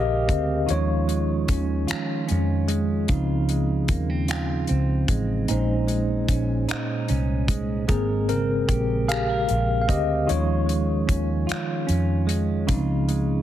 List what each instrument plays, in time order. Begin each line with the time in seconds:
Already playing: fingered electric bass A#1, tine electric piano C#3 G#3 A#3 C4 G4 G#4 A#4 D#5 F5, clean electric guitar G#3 C4 G4 A#4
0.28 fingered electric bass D2, clean electric guitar C4, kick, closed hi-hat
0.66 fingered electric bass D#2, clean electric guitar D#3 F4, tine electric piano F3, closed hi-hat
0.70 tine electric piano G#3 C#4 F4 C#5
1.08 clean electric guitar G#3, closed hi-hat
1.48 fingered electric bass D#2, clean electric guitar C#4, kick, closed hi-hat
1.87 clean electric guitar F4, finger snap, muted fingered electric bass stroke, closed hi-hat
2.28 fingered electric bass F2, tine electric piano F3 G#3, clean electric guitar C#4, closed hi-hat
2.32 tine electric piano C#4
2.68 clean electric guitar G#3, closed hi-hat
3.08 fingered electric bass C#2, clean electric guitar C#3 F4, tine electric piano F3 C4 D#4, kick, closed hi-hat
3.49 clean electric guitar G#3, closed hi-hat
3.88 fingered electric bass D#2, clean electric guitar A#3, kick, closed hi-hat
4.10 clean electric guitar C4
4.28 clean electric guitar F4, finger snap, closed hi-hat
4.67 fingered electric bass C#2, clean electric guitar C4, closed hi-hat
5.08 fingered electric bass A1, clean electric guitar G#3, kick, closed hi-hat
5.48 fingered electric bass A#1, clean electric guitar A#2 D#4, tine electric piano G#3 C#4 D#4 C5, closed hi-hat
5.88 clean electric guitar G#3, closed hi-hat
6.29 fingered electric bass A#1, clean electric guitar C#4, kick, closed hi-hat
6.69 clean electric guitar D#4, finger snap, muted fingered electric bass stroke, closed hi-hat
7.08 fingered electric bass C2, clean electric guitar C#4, closed hi-hat
7.48 clean electric guitar G#3, kick, closed hi-hat
7.88 fingered electric bass G#1, clean electric guitar G#3 A#4, tine electric piano G#3 A#3 C4 G#4, kick, closed hi-hat
8.29 tine electric piano C#3 A#4, clean electric guitar C4, closed hi-hat
8.68 fingered electric bass A#1, clean electric guitar G4, kick, closed hi-hat
9.08 tine electric piano G4 F5, clean electric guitar G#4, finger snap, closed hi-hat
9.29 clean electric guitar A#4
9.48 fingered electric bass A#1, clean electric guitar G4, closed hi-hat
9.81 tine electric piano F5
9.88 fingered electric bass D2, clean electric guitar C4, tine electric piano G4 D#5, kick, closed hi-hat
10.27 fingered electric bass D#2, clean electric guitar D#3 F4, tine electric piano F3 G#3 C#4 F4 C#5, closed hi-hat
10.66 clean electric guitar G#3, closed hi-hat
11.07 fingered electric bass D#2, clean electric guitar C#4, kick, closed hi-hat
11.47 clean electric guitar F4, muted fingered electric bass stroke, closed hi-hat
11.52 finger snap
11.87 fingered electric bass F2, clean electric guitar C#4, closed hi-hat
12.27 clean electric guitar G#3, closed hi-hat
12.67 fingered electric bass C#2, clean electric guitar C#3 F4, tine electric piano F3 C4, kick, closed hi-hat
12.71 tine electric piano D#4
13.08 clean electric guitar G#3, closed hi-hat